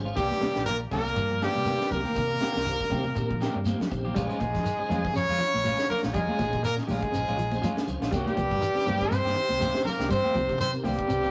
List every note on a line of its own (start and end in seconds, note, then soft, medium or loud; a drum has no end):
0.00 0.11 G#1 medium
0.00 0.16 C#4 medium
0.00 0.17 F4 medium
0.00 0.17 G#4 medium
0.00 0.17 C5 loud
0.05 0.15 C#3 medium
0.05 0.16 C#4 soft
0.05 0.16 F4 soft
0.16 0.28 C2 medium
0.16 0.64 G2 medium
0.16 0.38 D#3 medium
0.16 0.30 D#3 medium
0.16 0.64 G3 medium
0.16 0.30 A#3 medium
0.16 0.29 C4 medium
0.16 0.63 G4 medium
0.16 0.29 G4 medium
0.16 kick medium
0.16 closed hi-hat medium
0.16 shekere medium
0.31 muted clean electric guitar stroke soft
0.31 snare soft
0.31 high conga medium
0.41 0.63 C3 medium
0.41 0.55 D#3 medium
0.41 0.55 C4 medium
0.41 0.55 G4 medium
0.41 muted fingered electric bass stroke soft
0.41 snare medium
0.41 closed hi-hat soft
0.41 high conga medium
0.41 shekere soft
0.55 0.84 A#1 medium
0.55 muted clean electric guitar stroke soft
0.55 snare medium
0.55 closed hi-hat soft
0.66 0.80 A#2 medium
0.66 0.88 D#3 medium
0.66 0.79 A#3 medium
0.66 0.77 A#4 loud
0.66 closed hi-hat medium
0.66 low conga medium
0.66 shekere medium
0.81 muted clean electric guitar stroke soft
0.91 1.11 C2 medium
0.91 1.46 A#2 medium
0.91 1.13 C#3 medium
0.91 1.06 D#3 medium
0.91 1.05 A#3 medium
0.91 1.45 A#3 medium
0.91 1.05 C4 medium
0.91 1.04 G4 medium
0.91 1.45 A#4 medium
0.91 kick medium
0.91 open hi-hat medium
0.91 high conga medium
0.91 low conga medium
0.91 shekere soft
1.05 muted clean electric guitar stroke soft
1.16 1.47 G2 loud
1.16 1.29 D#3 medium
1.16 muted clean electric guitar stroke soft
1.16 kick medium
1.16 closed hi-hat medium
1.16 shekere medium
1.30 1.52 F3 medium
1.30 muted clean electric guitar stroke soft
1.41 1.93 G2 medium
1.41 1.58 D#3 medium
1.41 1.92 G3 medium
1.41 1.58 A#3 medium
1.41 1.58 C4 medium
1.41 1.58 G4 medium
1.41 1.91 G4 medium
1.41 snare medium
1.41 closed hi-hat soft
1.41 shekere soft
1.55 1.75 C3 medium
1.55 1.77 G3 medium
1.55 high conga medium
1.65 1.80 D#3 medium
1.65 1.80 A#3 medium
1.65 2.02 C4 medium
1.65 1.79 C4 medium
1.65 2.02 D#4 medium
1.65 2.02 G4 medium
1.65 1.79 G4 medium
1.65 2.02 A#4 medium
1.65 closed hi-hat medium
1.65 high conga medium
1.65 shekere medium
1.80 muted clean electric guitar stroke soft
1.80 snare medium
1.91 2.02 C2 medium
1.91 3.63 A#2 medium
1.91 3.63 A#3 medium
1.91 3.62 A#4 loud
1.91 muted clean electric guitar stroke soft
1.91 kick medium
1.91 snare soft
1.91 closed hi-hat soft
1.91 low conga medium
1.91 shekere soft
2.04 2.15 D#3 medium
2.04 2.20 A#3 soft
2.04 2.19 C4 soft
2.04 2.19 G4 medium
2.04 closed hi-hat soft
2.04 high conga medium
2.15 2.36 C3 medium
2.15 2.38 D#3 medium
2.15 kick loud
2.15 closed hi-hat medium
2.15 shekere medium
2.30 muted clean electric guitar stroke soft
2.40 2.63 C3 medium
2.40 2.55 D#3 medium
2.40 2.55 A#3 medium
2.40 2.54 C4 medium
2.40 2.55 C4 medium
2.40 2.54 D#4 medium
2.40 2.55 G4 medium
2.40 2.56 G4 medium
2.40 2.55 A#4 medium
2.40 muted fingered electric bass stroke soft
2.40 snare medium
2.40 closed hi-hat soft
2.40 high conga medium
2.40 shekere soft
2.55 2.74 C2 loud
2.55 muted clean electric guitar stroke medium
2.55 snare medium
2.65 2.88 D#3 medium
2.65 2.79 C4 medium
2.65 2.80 D#4 medium
2.65 2.80 G4 medium
2.65 2.80 C5 medium
2.65 closed hi-hat medium
2.65 shekere medium
2.80 muted clean electric guitar stroke soft
2.80 kick medium
2.80 snare soft
2.90 3.11 C3 medium
2.90 3.13 C#3 medium
2.90 3.05 A#3 medium
2.90 3.04 C4 medium
2.90 3.05 D#4 medium
2.90 3.04 G4 medium
2.90 3.05 G4 medium
2.90 3.05 C5 loud
2.90 muted clean electric guitar stroke medium
2.90 kick medium
2.90 open hi-hat medium
2.90 high conga medium
2.90 low conga medium
2.90 shekere soft
3.03 muted clean electric guitar stroke medium
3.03 high conga medium
3.15 3.47 A#2 medium
3.15 3.28 D#3 medium
3.15 3.29 C4 medium
3.15 3.29 D#4 medium
3.15 3.30 G4 medium
3.15 3.29 A#4 loud
3.15 muted clean electric guitar stroke soft
3.15 kick medium
3.15 closed hi-hat medium
3.15 shekere medium
3.29 3.51 F3 medium
3.29 muted clean electric guitar stroke soft
3.29 kick medium
3.40 3.57 D#3 medium
3.40 3.57 A#3 medium
3.40 3.57 C4 loud
3.40 3.54 C4 medium
3.40 3.54 D#4 medium
3.40 3.54 G4 medium
3.40 3.57 G4 loud
3.40 3.54 A#4 loud
3.40 snare medium
3.40 closed hi-hat medium
3.40 shekere soft
3.54 3.74 G2 medium
3.54 3.76 G3 medium
3.54 high conga medium
3.64 3.80 D#3 medium
3.64 3.80 A#3 medium
3.64 3.78 C4 medium
3.64 3.78 D#4 medium
3.64 3.78 G4 medium
3.64 3.78 C5 loud
3.64 muted clean electric guitar stroke medium
3.64 closed hi-hat medium
3.64 high conga medium
3.64 shekere loud
3.79 4.01 F3 medium
3.79 muted clean electric guitar stroke soft
3.79 snare medium
3.79 low conga medium
3.90 4.10 A#1 medium
3.90 4.15 C4 medium
3.90 4.15 D#4 medium
3.90 4.15 G4 medium
3.90 4.14 C5 loud
3.90 muted clean electric guitar stroke soft
3.90 kick medium
3.90 closed hi-hat soft
3.90 shekere soft
4.04 4.14 D#3 medium
4.04 4.15 A#3 soft
4.04 4.16 C4 medium
4.04 4.15 G4 medium
4.04 low conga medium
4.14 4.27 A#1 loud
4.14 5.11 G#2 medium
4.14 4.37 G3 medium
4.14 4.28 G#3 medium
4.14 4.44 C#4 medium
4.14 4.28 C#4 medium
4.14 4.44 F4 medium
4.14 4.27 F4 medium
4.14 4.45 G#4 medium
4.14 5.12 G#4 medium
4.14 4.45 C5 medium
4.14 kick medium
4.14 closed hi-hat medium
4.14 shekere medium
4.19 5.13 G#3 medium
4.29 4.39 G#3 medium
4.29 4.40 C#4 medium
4.29 4.40 F4 medium
4.29 closed hi-hat soft
4.40 4.51 A#1 medium
4.40 muted clean electric guitar stroke soft
4.40 kick medium
4.40 closed hi-hat soft
4.40 high conga medium
4.40 shekere soft
4.54 4.63 F2 medium
4.54 muted clean electric guitar stroke soft
4.54 kick medium
4.54 snare soft
4.54 closed hi-hat soft
4.64 4.77 D#3 medium
4.64 closed hi-hat medium
4.64 low conga medium
4.64 shekere medium
4.79 4.88 C#3 medium
4.79 5.07 C#4 medium
4.79 5.07 F4 medium
4.79 5.08 G#4 medium
4.79 5.07 C5 medium
4.79 muted clean electric guitar stroke medium
4.79 muted fingered electric bass stroke soft
4.89 5.09 F2 loud
4.89 5.11 D#3 medium
4.89 5.04 G#3 medium
4.89 5.04 C#4 medium
4.89 5.04 F4 medium
4.89 closed hi-hat soft
4.89 high conga medium
4.89 low conga medium
4.89 shekere soft
5.05 muted clean electric guitar stroke medium
5.05 kick medium
5.14 5.25 F2 medium
5.14 5.36 C#3 medium
5.14 5.85 C#3 loud
5.14 5.86 C#4 medium
5.14 5.86 C#5 loud
5.14 muted clean electric guitar stroke soft
5.14 closed hi-hat medium
5.14 shekere loud
5.29 5.37 F2 medium
5.29 5.39 G#3 medium
5.29 5.40 C#4 medium
5.29 5.40 F4 medium
5.38 5.61 F3 medium
5.38 5.86 C#4 medium
5.38 5.86 F4 medium
5.38 5.86 G#4 medium
5.38 5.86 C#5 medium
5.38 muted clean electric guitar stroke soft
5.38 snare soft
5.38 closed hi-hat soft
5.38 shekere soft
5.54 5.73 A#1 medium
5.54 closed hi-hat soft
5.54 high conga medium
5.64 5.76 F3 medium
5.64 5.79 G#3 medium
5.64 5.79 C#4 medium
5.64 5.79 F4 medium
5.64 closed hi-hat medium
5.64 high conga medium
5.64 shekere medium
5.78 6.00 C#3 medium
5.78 muted clean electric guitar stroke soft
5.78 snare medium
5.78 closed hi-hat soft
5.89 6.02 A#2 medium
5.89 6.01 A#3 medium
5.89 6.01 A#4 medium
5.89 muted clean electric guitar stroke soft
5.89 snare soft
5.89 open hi-hat medium
5.89 low conga medium
5.89 shekere soft
6.03 6.12 A#1 medium
6.03 6.18 C#4 soft
6.03 6.17 F4 soft
6.03 snare medium
6.03 closed hi-hat soft
6.03 high conga medium
6.13 6.25 F2 medium
6.13 6.61 G#2 medium
6.13 6.35 G3 loud
6.13 6.60 G#3 medium
6.13 6.60 G#4 medium
6.13 kick medium
6.13 closed hi-hat medium
6.13 shekere medium
6.28 6.39 G#3 soft
6.28 6.39 C#4 medium
6.28 6.39 F4 medium
6.28 high conga medium
6.37 6.50 A#1 loud
6.37 6.60 F3 medium
6.37 6.56 C#4 medium
6.37 6.56 F4 medium
6.37 6.56 G#4 medium
6.37 6.56 C#5 medium
6.37 muted clean electric guitar stroke soft
6.37 kick medium
6.37 snare soft
6.37 closed hi-hat medium
6.37 high conga loud
6.37 shekere soft
6.53 6.81 A#2 medium
6.53 muted clean electric guitar stroke soft
6.53 kick medium
6.53 closed hi-hat soft
6.63 6.76 A#2 medium
6.63 6.75 D#3 medium
6.63 6.76 A#3 medium
6.63 6.75 A#4 loud
6.63 closed hi-hat medium
6.63 shekere medium
6.76 6.87 C#3 medium
6.76 6.93 C#4 medium
6.76 6.93 F4 medium
6.76 6.93 G#4 medium
6.76 6.93 D#5 medium
6.76 muted clean electric guitar stroke medium
6.76 snare soft
6.76 closed hi-hat soft
6.87 6.99 A#1 medium
6.87 7.83 G#2 medium
6.87 7.10 D#3 medium
6.87 7.03 G#3 medium
6.87 7.84 G#3 medium
6.87 7.03 C#4 medium
6.87 7.03 F4 medium
6.87 7.83 G#4 medium
6.87 open hi-hat medium
6.87 high conga medium
6.87 low conga medium
6.87 shekere soft
7.02 muted clean electric guitar stroke soft
7.02 kick medium
7.02 closed hi-hat soft
7.12 7.24 A#1 medium
7.12 7.34 C#3 medium
7.12 7.31 C#4 medium
7.12 7.31 F4 medium
7.12 7.31 G#4 medium
7.12 7.32 C5 medium
7.12 muted clean electric guitar stroke soft
7.12 closed hi-hat medium
7.12 shekere loud
7.28 7.36 A#1 medium
7.28 7.37 G#3 medium
7.28 7.37 C#4 medium
7.28 7.38 F4 medium
7.28 closed hi-hat soft
7.37 7.57 A#1 medium
7.37 7.59 F3 medium
7.37 muted clean electric guitar stroke soft
7.37 closed hi-hat soft
7.37 shekere soft
7.50 7.67 C#4 medium
7.50 7.67 F4 loud
7.50 7.68 G#4 loud
7.50 7.68 C5 loud
7.50 closed hi-hat soft
7.50 high conga medium
7.62 7.74 F3 medium
7.62 7.77 G#3 medium
7.62 7.77 C#4 medium
7.62 7.76 F4 medium
7.62 closed hi-hat medium
7.62 high conga medium
7.62 low conga medium
7.62 shekere medium
7.75 7.98 C#3 medium
7.75 muted clean electric guitar stroke soft
7.75 snare medium
7.87 7.98 C#2 medium
7.87 8.00 C#4 medium
7.87 8.00 F4 medium
7.87 8.00 G#4 medium
7.87 8.00 C5 loud
7.87 muted clean electric guitar stroke soft
7.87 closed hi-hat medium
7.87 low conga medium
7.87 shekere soft
8.01 8.09 A#1 medium
8.01 8.13 C#4 soft
8.01 8.12 F4 soft
8.01 snare medium
8.01 closed hi-hat soft
8.11 8.23 C2 loud
8.11 9.13 G2 medium
8.11 8.26 D#3 medium
8.11 8.33 G3 medium
8.11 8.26 A#3 medium
8.11 8.41 C4 medium
8.11 8.26 C4 medium
8.11 8.41 D#4 medium
8.11 8.42 G4 medium
8.11 8.26 G4 medium
8.11 8.41 A#4 medium
8.11 kick loud
8.11 snare soft
8.11 closed hi-hat medium
8.11 shekere medium
8.16 9.15 G3 medium
8.16 9.15 G4 loud
8.27 8.36 D#3 medium
8.27 8.36 A#3 medium
8.27 8.36 C4 medium
8.27 8.36 G4 medium
8.27 closed hi-hat soft
8.27 high conga medium
8.37 8.48 C2 medium
8.37 8.59 F3 medium
8.37 muted clean electric guitar stroke soft
8.37 kick medium
8.37 closed hi-hat soft
8.37 high conga medium
8.37 shekere soft
8.51 8.60 G2 medium
8.51 muted clean electric guitar stroke soft
8.51 kick medium
8.51 closed hi-hat soft
8.61 8.74 D#3 medium
8.61 closed hi-hat medium
8.61 shekere loud
8.74 8.85 C#3 medium
8.74 9.03 C4 medium
8.74 9.03 D#4 medium
8.74 9.03 G4 medium
8.74 9.04 C5 loud
8.74 muted clean electric guitar stroke soft
8.74 muted fingered electric bass stroke soft
8.74 snare soft
8.86 9.05 G2 medium
8.86 9.08 D#3 medium
8.86 9.00 D#3 medium
8.86 9.00 A#3 medium
8.86 9.00 C4 medium
8.86 8.99 G4 medium
8.86 closed hi-hat medium
8.86 high conga medium
8.86 low conga medium
8.86 shekere soft
9.00 muted clean electric guitar stroke soft
9.00 kick medium
9.11 9.22 G2 medium
9.11 9.33 C3 medium
9.11 9.86 C3 loud
9.11 9.87 C4 loud
9.11 9.84 C5 loud
9.11 muted clean electric guitar stroke soft
9.11 closed hi-hat medium
9.11 shekere medium
9.25 9.33 G2 medium
9.25 9.35 D#3 medium
9.25 9.35 A#3 medium
9.25 9.35 C4 medium
9.25 9.35 G4 medium
9.25 snare soft
9.35 9.57 D#3 medium
9.35 9.82 C4 medium
9.35 9.82 D#4 medium
9.35 9.82 G4 medium
9.35 9.83 C5 medium
9.35 muted clean electric guitar stroke soft
9.35 closed hi-hat soft
9.35 shekere soft
9.49 9.69 C2 medium
9.49 closed hi-hat soft
9.49 high conga medium
9.60 9.73 D#3 medium
9.60 9.75 D#3 medium
9.60 9.75 A#3 medium
9.60 9.74 C4 medium
9.60 9.74 G4 medium
9.60 snare soft
9.60 closed hi-hat medium
9.60 high conga medium
9.60 low conga medium
9.60 shekere loud
9.73 9.96 C3 medium
9.73 muted clean electric guitar stroke soft
9.73 snare medium
9.73 closed hi-hat soft
9.85 10.09 A#2 medium
9.85 10.10 A#3 medium
9.85 10.08 A#4 medium
9.85 muted clean electric guitar stroke soft
9.85 snare soft
9.85 open hi-hat medium
9.85 low conga medium
9.85 shekere soft
9.99 10.08 C2 medium
9.99 10.14 A#3 soft
9.99 10.13 C4 soft
9.99 10.13 G4 medium
9.99 snare medium
10.09 10.21 G2 medium
10.09 10.56 C3 medium
10.09 10.31 G3 loud
10.09 10.57 C4 medium
10.09 10.56 C5 medium
10.09 kick medium
10.09 closed hi-hat medium
10.09 shekere medium
10.24 10.34 D#3 medium
10.24 10.34 A#3 medium
10.24 10.35 C4 medium
10.24 10.35 G4 medium
10.24 high conga medium
10.33 10.46 C2 loud
10.33 10.56 F3 medium
10.33 10.52 C4 medium
10.33 10.53 D#4 medium
10.33 10.53 G4 medium
10.33 10.53 C5 medium
10.33 muted clean electric guitar stroke soft
10.33 kick medium
10.33 closed hi-hat soft
10.33 high conga loud
10.33 shekere soft
10.49 10.77 C3 medium
10.49 muted clean electric guitar stroke soft
10.49 kick medium
10.49 closed hi-hat soft
10.58 10.73 C3 medium
10.58 10.71 D#3 medium
10.58 10.72 C4 medium
10.58 10.72 C5 loud
10.58 closed hi-hat medium
10.58 low conga medium
10.58 shekere medium
10.72 10.89 C4 medium
10.72 10.90 D#4 medium
10.72 10.90 G4 medium
10.72 10.90 A#4 medium
10.72 muted clean electric guitar stroke soft
10.72 closed hi-hat soft
10.84 10.95 C2 medium
10.84 11.31 G2 medium
10.84 11.06 D#3 medium
10.84 10.98 D#3 medium
10.84 11.31 G3 medium
10.84 10.98 A#3 medium
10.84 10.98 C4 medium
10.84 11.31 G4 medium
10.84 10.97 G4 medium
10.84 open hi-hat medium
10.84 high conga medium
10.84 low conga medium
10.84 shekere soft
10.98 muted clean electric guitar stroke medium
10.98 kick medium
10.98 closed hi-hat soft
11.07 11.21 C2 medium
11.07 11.30 C3 medium
11.07 11.26 C4 medium
11.07 11.27 D#4 medium
11.07 11.26 G4 medium
11.07 11.27 C5 medium
11.07 muted clean electric guitar stroke soft
11.07 closed hi-hat medium
11.07 shekere medium
11.23 11.31 C2 medium
11.23 11.31 D#3 medium
11.23 11.31 A#3 medium
11.23 11.31 C4 medium
11.23 11.31 G4 medium
11.23 closed hi-hat soft